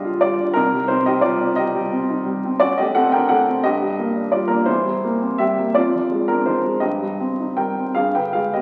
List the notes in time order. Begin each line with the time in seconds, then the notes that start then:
Already playing: B1 G3 D4 F4 G4 G#4 D5 D#5 F5
0.05 F4
0.21 G3 F4 D5
0.39 D4
0.54 C2 D#4 A#4
0.74 G3
0.88 C4 D#4 C5
1.06 D#4 G4 D#5
1.21 G3 F4 D5
1.42 C4
1.56 G4 D#5
1.75 G3
1.92 C4
2.10 D#4
2.26 G3
2.45 C4
2.60 F#2 F#4 D5
2.78 A3 G4 D#5
2.95 C4 A4 F#5
3.12 D4 A#4 G5
3.29 A3 A4 F#5
3.48 C4
3.64 G2 G4 D#5
3.82 G3
3.99 A#3
4.16 D4
4.32 G3 F4 D5
4.48 A#3 D4 A#4
4.66 E2 E4 C5
4.85 G3
5.05 A#3
5.22 C4
5.38 G3 G4 E5
5.59 A#3
5.75 F2 F4 D5
5.95 F3
6.12 G#3
6.28 C4 D4 A#4
6.46 F3 D#4 C5
6.65 G#3
6.80 G2 G4 D#5
7.02 G3
7.20 C4
7.40 D#4
7.57 G3 A#4 G5
7.79 C4
7.95 G2 G#4 F5
8.15 D3 B4 G5
8.33 G#3 G#4 F5
8.54 B3 G4 D#5